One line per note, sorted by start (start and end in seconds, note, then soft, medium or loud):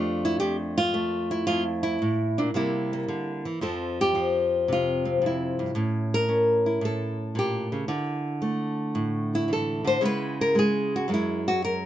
0.00 0.40 F2 medium
0.00 0.94 A3 medium
0.00 0.79 D4 medium
0.00 0.41 F4 medium
0.00 0.24 G4 loud
0.25 0.39 E4 medium
0.40 1.46 F2 medium
0.40 0.56 G4 loud
0.78 1.46 F4 loud
0.94 2.42 A3 medium
1.31 1.82 E4 medium
1.47 2.01 F2 medium
1.47 1.63 F4 medium
1.83 2.54 E4 medium
2.02 2.38 A2 medium
2.38 2.54 A#2 medium
2.38 2.48 D4 medium
2.54 3.08 C3 medium
2.54 3.45 G3 soft
2.54 2.92 A#3 soft
2.54 3.62 E4 medium
2.93 3.60 A#3 soft
3.08 3.45 D3 medium
3.45 3.62 E3 medium
3.61 5.20 F2 medium
3.61 4.14 F3 soft
3.61 5.04 C4 soft
3.61 4.01 A4 soft
4.01 4.70 G4 medium
4.15 5.73 F3 medium
4.68 5.73 C3 medium
4.73 5.24 F4 medium
5.05 5.73 C4 soft
5.22 5.58 F2 medium
5.26 6.14 E4 medium
5.59 5.75 G2 medium
5.75 6.80 A2 medium
5.75 6.27 C#4 soft
6.14 6.83 A#4 medium
6.29 7.86 C#4 medium
6.66 7.88 E4 soft
6.81 7.86 A2 medium
6.81 7.37 A4 medium
7.35 7.72 A#2 medium
7.35 8.27 G4 medium
7.72 7.88 C#3 medium
7.88 9.83 D3 medium
7.88 9.32 E4 soft
8.42 9.48 A3 medium
8.95 9.99 A2 medium
9.35 9.50 E4 medium
9.48 9.85 E3 medium
9.53 9.87 A4 medium
9.84 10.01 D3 medium
9.84 10.03 C5 loud
10.01 11.06 C#3 medium
10.01 10.55 G#3 soft
10.01 11.06 B3 soft
10.01 10.92 E4 soft
10.05 10.40 B4 medium
10.41 10.56 A#4 medium
10.55 11.08 G#3 medium
10.55 10.94 G#4 medium
10.96 11.10 F#4 medium
11.08 11.86 F#2 medium
11.08 11.86 F#3 soft
11.08 11.86 G#3 soft
11.14 11.48 E4 medium
11.48 11.63 F#4 medium
11.65 11.86 A#4 medium